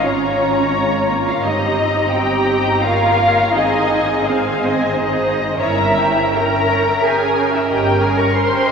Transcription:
Already playing: G#1 C#4 C#5
0.01 C#4 F4 C#5 A#5
0.38 F4
0.73 G#3
1.09 A#3
1.28 F4 F5
1.44 G1 C4 D#4 G4 D#5 A#5
2.13 D#4 G4 D#5 G5
2.48 D#4
2.83 A#3 F4 A#4 C#5 F5
3.21 C#5
3.54 G#1 C4 D#4 G#4 D#5 G#5
3.91 C4
4.25 C4 C5 F5 G#5
4.62 D#5
4.93 D#4 G#4 C5 D#5
5.59 G1 C#4 E4 A#4 C#5 E5 A#5
5.78 E5
5.99 G5
6.17 A#5
6.34 A#4 G5 A#5
6.54 E5
6.70 C#5
6.89 E5
7.04 G#4 G5 G#5
7.21 A#5
7.38 G5
7.53 E4 E5
7.70 G1 G4 D#5 G5
7.86 G5
8.03 G#4 G#5 A#5
8.18 A#4 A#5 C#6
8.34 C5 A#5 C6
8.50 G5
8.67 D#5

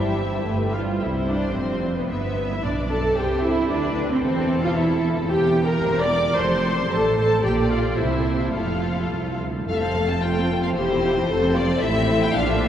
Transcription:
Already playing: G1 G2 G3 E4 G4 C5 E5
0.45 G1 G2 A3 G4 B4
0.72 G3 F4 F5
1.01 C2 C3 E4 C5 E5
1.28 D4 D5
1.55 F1 F2 C4 C5
1.95 B3 B4
2.10 G1 G2 B3 B4 E5
2.51 E4 E5
2.64 B1 B2 D4 D5
2.90 A4 A5
3.16 C2 C3 G4 C5 G5
3.42 E4 E5
3.68 D2 D3 D4 B4 D5
4.09 C4 C5
4.22 E1 E2 C4 A4 C5
4.63 F4 F5
4.76 E4 E5
5.30 E1 E2 G4 G5
5.65 A#4 A#5
5.83 E1 E2 C5
6.01 D5 D6
6.08 A#4
6.36 F1 F2 A4 C5 C6
6.89 A1 A2 A4 C5 A5
7.17 A4 A5
7.42 A#1 A#2 G4 D5 G5
7.71 F4 F5
7.97 C2 C3 E4 C5 E5
8.39 E4 E5
8.53 F1 F2 F4 A4 F5
9.12 C2
9.40 D2
9.67 F1 F2 A3 A4 F5
9.74 E5
9.80 C4 C5 F5
9.96 A3 A4
10.08 C4 C5 A5
10.21 A3 F4 A4 G5
10.37 C4 C5
10.51 A3 A4
10.63 C4 C5 F5
10.75 E1 E2 E4 G4 C5
10.91 C4 E4
11.03 E4 G4
11.17 C4 E4
11.27 F1 F2 A3 A4
11.43 C4 C5
11.53 A3 F4 A4 D5
11.69 C4 C5
11.80 A1 A2 C4 E4 A4 E5
12.23 G5
12.34 A#1 A#2 D4 F4 F5
12.48 E5

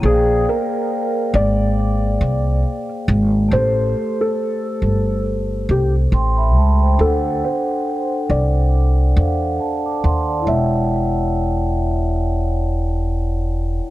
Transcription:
0.00 A#1 A#3 G#4 C5
0.05 G#4 D5 F5
0.14 G5
0.49 A#4
1.34 G#1 D5
2.21 C2
3.08 G#1
3.49 A1 A3 G4
3.53 A4 C5
4.21 A4
4.82 G1
5.69 C2 G4
6.12 A1 G5 C6
6.37 E5 B5
6.55 C#2 E5 A5
6.82 C5 G5
6.97 D2 D4 A4
7.02 C5 F#5
7.44 C5
8.30 C2 D5
9.16 E2 D4 A4 C5 F5
9.26 F#5
9.60 D5 A5
9.86 A5 D6
10.03 D#2 F#5 C6
10.27 D5 A5
10.40 E4
10.45 E1 C#5 E5
10.49 F#5
10.54 G5

